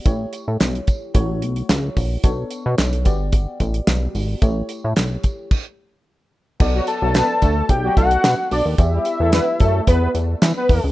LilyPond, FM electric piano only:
\new Staff \with { instrumentName = "FM electric piano" } { \time 4/4 \key a \mixolydian \tempo 4 = 110 <a e' g' cis''>2 <a e' fis' cis''>2 | <b d' a' cis''>4. <b fis' g' d''>2~ <b fis' g' d''>8 | <a e' g' cis''>2 r2 | \key b \minor <b fis' a' d''>2.~ <b fis' a' d''>8 <b fis' a' d''>8 |
<b e' g' d''>1 | }